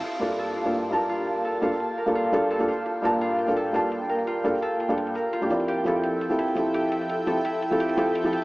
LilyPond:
<<
  \new Staff \with { instrumentName = "Analog synth pad" } { \time 4/4 \key g \dorian \tempo 4 = 170 << { a''1~ | a''1 | g''1~ | g''1~ |
g''1~ | g''1 | } \\ { <bes g' f''>1~ | <bes g' f''>1~ | <bes g' f''>1~ | <bes g' f''>1 |
<f a' e''>1~ | <f a' e''>1 | } >> }
  \new Staff \with { instrumentName = "Harp" } { \time 4/4 \key g \dorian f'8 r8 a'8 f'8 r8 bes'8 f'8 r8 | a'8 f'8 r8 bes'8 f'8 r8 a'8 f'8 | r8 bes'8 f'8 r8 a'8 f'8 r8 bes'8 | f'8 r8 a'8 f'8 r8 bes'8 f'8 r8 |
g'8 e'8 r8 a'8 e'8 r8 g'8 e'8 | r8 a'8 e'8 r8 g'8 e'8 r8 a'8 | }
  \new Staff \with { instrumentName = "Felt piano" } { \time 4/4 \key g \dorian r8 <g, bes d' f' a'>4~ <g, bes d' f' a'>16 <g, bes d' f' a'>8. <g, bes d' f' a''>4.~ | <g, bes d' f' a''>8 <g, bes d' f' a'>16 r4 <g, bes d' f' a'>8. <g, bes d' f' a'>8. <g, bes d' f' a'>16 r8 | r8 <g, bes d' f' a''>4~ <g, bes d' f' a''>16 <g, bes d' f' a'>8. <g, bes d' f' a''>4.~ | <g, bes d' f' a''>8 <g, bes d' f' a'>16 r4 <g, bes d' f' a'>8. r8. <g, bes d' f' g'>16 <f c' e' g' d''>8~ |
<f c' e' g' d''>8 <f c' e' g' a'>4~ <f c' e' g' a'>16 <f c' e' g' a'>8. <f c' e' g' a'>4.~ | <f c' e' g' a'>8 <f c' e' g' a'>16 r4 <f c' e' g' a'>8. <f c' e' g' a'>8. <f c' e' g' a'>16 r8 | }
  \new DrumStaff \with { instrumentName = "Drums" } \drummode { \time 4/4 hh4 hh8 hh8 hh16 hh16 hh8 hh8 hh16 hh16 | hh8 hh8 hh8 hh8 hh16 hh16 hh8 hh8 hh16 hh16 | hh8 hh8 hh8 hh8 hh16 hh16 hh8 hh8 hh16 hh16 | hh8 hh8 hh8 hh8 hh16 hh16 hh8 hh16 hh16 hh16 hh16 |
hh8 hh8 hh8 hh8 hh16 hh16 hh8 hh8 hh16 hh16 | hh8 hh8 hh8 hh8 hh16 hh16 hh8 hh8 hh8 | }
>>